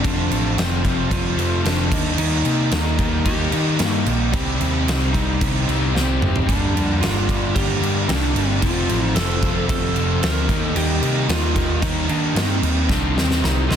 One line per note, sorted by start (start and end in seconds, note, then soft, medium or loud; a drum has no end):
0.03 0.29 F1 medium
0.03 0.30 F2 medium
0.03 0.30 C3 medium
0.03 0.30 F3 loud
0.03 0.31 A3 loud
0.03 0.31 C4 loud
0.03 0.59 D4 medium
0.03 1.90 F4 medium
0.03 1.90 C5 medium
0.03 1.90 A5 medium
0.03 kick loud
0.03 crash medium
0.31 0.55 A1 medium
0.31 0.56 F2 medium
0.31 0.57 C3 medium
0.31 0.57 F3 medium
0.31 0.58 A3 medium
0.31 0.58 C4 loud
0.31 crash medium
0.57 0.82 F1 loud
0.57 0.82 F2 loud
0.57 0.83 C3 loud
0.57 0.83 F3 medium
0.57 0.84 A3 loud
0.57 1.13 C4 medium
0.57 0.84 C4 loud
0.57 snare loud
0.57 crash medium
0.83 1.09 F1 medium
0.83 1.08 F2 medium
0.83 1.09 C3 medium
0.83 1.10 F3 loud
0.83 1.10 A3 medium
0.83 1.11 C4 medium
0.83 kick medium
0.83 crash medium
0.88 1.92 F2 medium
1.10 1.36 F1 loud
1.10 1.35 F2 loud
1.10 1.36 C3 loud
1.10 1.37 F3 loud
1.10 1.37 A3 loud
1.10 1.37 C4 loud
1.10 1.64 F4 medium
1.10 kick loud
1.10 crash medium
1.36 1.63 F1 medium
1.36 1.63 F2 medium
1.36 1.63 C3 medium
1.36 1.64 F3 medium
1.36 1.64 A3 loud
1.36 1.64 C4 loud
1.36 crash medium
1.64 1.90 F1 medium
1.64 1.90 F2 loud
1.64 1.90 C3 loud
1.64 1.90 F3 loud
1.64 1.90 A3 loud
1.64 1.90 C4 loud
1.64 2.15 D4 loud
1.64 snare loud
1.64 crash medium
1.91 2.17 D#2 loud
1.91 2.16 D#3 loud
1.91 2.17 G3 loud
1.91 2.17 A#3 loud
1.91 2.19 D#4 loud
1.91 8.58 G4 medium
1.91 6.44 D#5 medium
1.91 4.31 A#5 medium
1.91 kick loud
1.91 crash loud
2.17 2.43 D#2 loud
2.17 2.43 D#3 loud
2.17 2.44 G3 loud
2.17 2.44 A#3 loud
2.17 2.72 D#4 loud
2.17 2.45 D#4 loud
2.17 crash medium
2.45 2.70 C3 medium
2.45 2.70 D#3 medium
2.45 2.71 G3 medium
2.45 2.71 A#3 loud
2.45 2.72 D#4 loud
2.45 crash medium
2.71 2.97 D#2 loud
2.71 2.96 D#3 loud
2.71 2.98 G3 loud
2.71 2.98 A#3 loud
2.71 2.99 D#4 loud
2.71 3.28 D#4 loud
2.71 snare loud
2.71 crash medium
2.98 3.24 D#2 medium
2.98 3.24 D#3 medium
2.98 3.26 G3 loud
2.98 3.25 A#3 loud
2.98 3.26 D#4 loud
2.98 kick medium
2.98 crash medium
3.25 3.50 D#2 loud
3.25 3.51 D#3 loud
3.25 3.52 G3 loud
3.25 3.52 A#3 loud
3.25 3.53 D#4 loud
3.25 3.81 G4 loud
3.25 kick loud
3.25 crash medium
3.52 3.78 D#3 loud
3.52 3.80 G3 medium
3.52 3.79 A#3 loud
3.52 3.80 D#4 loud
3.52 crash medium
3.79 4.05 G2 loud
3.79 4.05 D#3 loud
3.79 4.06 G3 loud
3.79 4.33 A#3 loud
3.79 4.06 A#3 loud
3.79 4.06 D#4 loud
3.79 snare loud
3.79 crash medium
4.06 4.33 A#1 medium
4.06 4.31 D#3 medium
4.06 4.33 G3 loud
4.06 4.32 A#3 medium
4.06 4.32 D#4 medium
4.06 crash medium
4.33 4.58 C2 medium
4.33 4.59 C3 medium
4.33 4.60 G3 loud
4.33 5.09 C4 loud
4.33 4.60 C4 loud
4.33 4.60 D#4 loud
4.33 6.46 C6 medium
4.33 kick loud
4.33 crash medium
4.60 4.85 D#2 medium
4.60 4.86 C3 medium
4.60 4.88 G3 medium
4.60 4.88 C4 medium
4.60 4.88 D#4 medium
4.60 crash medium
4.87 5.12 C2 medium
4.87 5.13 C3 loud
4.87 5.14 G3 loud
4.87 5.14 C4 loud
4.87 5.14 D#4 loud
4.87 snare loud
4.87 crash medium
5.13 5.39 C2 medium
5.13 5.40 C3 medium
5.13 5.41 G3 medium
5.13 5.41 C4 loud
5.13 5.90 D#4 medium
5.13 5.42 D#4 loud
5.13 kick medium
5.13 crash medium
5.41 5.66 C2 medium
5.41 5.67 C3 medium
5.41 5.67 G3 loud
5.41 5.68 C4 loud
5.41 5.68 D#4 loud
5.41 kick loud
5.41 crash medium
5.68 5.92 C2 loud
5.68 5.93 C3 medium
5.68 5.94 G3 medium
5.68 5.94 C4 medium
5.68 5.94 D#4 medium
5.68 crash medium
5.94 6.19 C2 medium
5.94 6.19 C3 loud
5.94 6.20 G3 loud
5.94 6.20 C4 loud
5.94 6.44 C4 medium
5.94 6.21 D#4 loud
5.94 snare medium
6.20 6.46 G1 medium
6.20 6.45 C3 medium
6.20 6.46 G3 medium
6.20 6.46 C4 medium
6.20 6.46 D#4 medium
6.20 mid tom loud
6.36 floor tom loud
6.47 6.73 G1 medium
6.47 6.72 G2 loud
6.47 6.73 D3 loud
6.47 6.74 G3 loud
6.47 6.74 A#3 loud
6.47 7.01 D4 loud
6.47 6.75 D4 loud
6.47 8.61 D5 medium
6.47 8.61 A#5 medium
6.47 kick loud
6.47 crash medium
6.74 6.99 F2 medium
6.74 7.00 G2 medium
6.74 7.00 D3 medium
6.74 7.01 G3 medium
6.74 7.01 A#3 medium
6.74 7.01 D4 medium
6.74 crash medium
7.01 7.26 G1 medium
7.01 7.27 G2 loud
7.01 7.28 D3 loud
7.01 7.29 G3 loud
7.01 7.29 A#3 loud
7.01 7.29 D4 loud
7.01 7.56 F4 medium
7.01 snare loud
7.01 crash medium
7.28 7.53 G1 medium
7.28 7.53 G2 medium
7.28 7.54 D3 medium
7.28 7.54 G3 medium
7.28 7.55 A#3 medium
7.28 7.55 D4 loud
7.28 kick medium
7.28 crash medium
7.54 7.80 G1 medium
7.54 7.80 G2 loud
7.54 7.81 D3 loud
7.54 7.81 G3 loud
7.54 7.82 A#3 loud
7.54 7.82 D4 loud
7.54 8.10 G4 loud
7.54 kick loud
7.54 crash medium
7.81 8.07 G2 medium
7.81 8.08 D3 medium
7.81 8.09 G3 loud
7.81 8.09 A#3 loud
7.81 8.09 D4 medium
7.81 crash medium
8.08 8.33 C2 loud
8.08 8.33 G2 loud
8.08 8.34 D3 loud
8.08 8.34 G3 loud
8.08 8.35 A#3 loud
8.08 8.58 D4 medium
8.08 8.36 D4 loud
8.08 snare loud
8.08 crash medium
8.35 8.60 G1 loud
8.35 8.60 G2 medium
8.35 8.60 D3 medium
8.35 8.60 G3 medium
8.35 8.61 A#3 medium
8.35 8.61 D4 loud
8.35 crash medium
8.61 8.87 F1 loud
8.61 8.87 F2 loud
8.61 8.88 C3 loud
8.61 8.88 F3 loud
8.61 8.89 A3 loud
8.61 8.89 C4 loud
8.61 10.47 F4 medium
8.61 9.06 F4 loud
8.61 10.47 C5 medium
8.61 10.47 A5 medium
8.61 kick loud
8.61 crash medium
8.88 9.14 A1 medium
8.88 9.14 F2 medium
8.88 9.14 C3 medium
8.88 9.15 F3 loud
8.88 9.15 A3 medium
8.88 9.15 C4 loud
8.88 crash medium
9.06 9.17 D#4 loud
9.15 9.40 F1 loud
9.15 9.40 F2 loud
9.15 9.41 C3 loud
9.15 9.41 F3 loud
9.15 9.42 A3 loud
9.15 9.42 C4 loud
9.15 9.65 A4 loud
9.15 snare loud
9.15 crash medium
9.41 9.67 F1 medium
9.41 9.67 F2 medium
9.41 9.67 C3 medium
9.41 9.68 F3 medium
9.41 9.69 A3 medium
9.41 9.69 C4 medium
9.41 kick medium
9.41 crash medium
9.68 9.94 F1 loud
9.68 9.93 F2 loud
9.68 9.94 C3 loud
9.68 9.94 F3 loud
9.68 9.95 A3 loud
9.68 9.95 C4 loud
9.68 10.22 A4 loud
9.68 kick loud
9.68 crash medium
9.94 10.20 F1 loud
9.94 10.19 F2 medium
9.94 10.20 C3 medium
9.94 10.20 F3 loud
9.94 10.21 A3 medium
9.94 10.21 C4 loud
9.94 crash medium
10.20 10.47 D2 loud
10.20 10.46 F2 loud
10.20 10.47 C3 loud
10.20 10.47 F3 loud
10.20 10.47 A3 loud
10.20 10.47 C4 loud
10.20 10.63 A#4 loud
10.20 snare loud
10.20 crash medium
10.48 10.74 D#2 medium
10.48 10.73 D#3 loud
10.48 10.74 G3 loud
10.48 10.74 A#3 loud
10.48 10.75 D#4 loud
10.48 13.76 G4 medium
10.48 12.87 D#5 medium
10.48 12.87 A#5 medium
10.48 kick loud
10.48 crash medium
10.63 10.76 A4 loud
10.74 11.01 D#2 loud
10.74 10.98 D#3 loud
10.74 11.00 G3 loud
10.74 11.00 A#3 loud
10.74 11.01 D#4 loud
10.74 11.26 G4 loud
10.74 crash medium
11.00 11.27 C3 medium
11.00 11.25 D#3 medium
11.00 11.27 G3 loud
11.00 11.27 A#3 medium
11.00 11.28 D#4 loud
11.00 crash medium
11.27 11.54 D#2 loud
11.27 11.53 D#3 loud
11.27 11.54 G3 loud
11.27 11.54 A#3 loud
11.27 11.55 D#4 loud
11.27 11.82 F4 loud
11.27 snare loud
11.27 crash medium
11.54 11.81 D#2 medium
11.54 11.79 D#3 medium
11.54 11.81 G3 medium
11.54 11.80 A#3 medium
11.54 11.81 D#4 loud
11.54 kick medium
11.54 crash medium
11.80 12.07 D#2 loud
11.80 12.05 D#3 loud
11.80 12.08 G3 loud
11.80 12.07 A#3 loud
11.80 12.07 D#4 loud
11.80 12.09 D#4 loud
11.80 kick loud
11.80 crash medium
12.07 12.33 D#3 loud
12.07 12.34 D#3 loud
12.07 12.34 G3 medium
12.07 12.34 A#3 loud
12.07 12.34 D4 medium
12.07 12.34 D#4 loud
12.07 crash medium
12.34 12.60 G2 medium
12.34 12.61 D#3 loud
12.34 12.62 G3 loud
12.34 12.62 A#3 loud
12.34 12.91 C4 loud
12.34 12.62 D#4 loud
12.34 snare loud
12.34 crash medium
12.62 12.87 D#2 loud
12.62 12.87 D#3 medium
12.62 12.88 G3 loud
12.62 12.88 A#3 medium
12.62 12.88 D#4 loud
12.62 crash medium
12.88 13.14 C2 loud
12.88 13.14 C3 medium
12.88 13.15 G3 loud
12.88 13.15 C4 loud
12.88 13.18 D4 loud
12.88 13.16 D#4 loud
12.88 13.76 D#5 medium
12.88 13.76 C6 medium
12.88 kick loud
12.88 snare medium
13.15 13.41 D#2 medium
13.15 13.40 C3 medium
13.15 13.41 G3 loud
13.15 13.42 C4 medium
13.15 13.41 C4 medium
13.15 13.42 D#4 medium
13.15 snare medium
13.31 snare medium
13.42 13.68 C2 medium
13.42 13.67 C3 loud
13.42 13.68 G3 loud
13.42 13.68 C4 loud
13.42 13.69 D#4 loud
13.42 13.68 D#4 loud
13.42 snare medium
13.68 13.76 C2 medium
13.68 13.76 C3 medium
13.68 13.76 G3 medium
13.68 13.76 C4 loud
13.68 13.76 D#4 medium
13.68 13.76 F4 medium
13.68 snare medium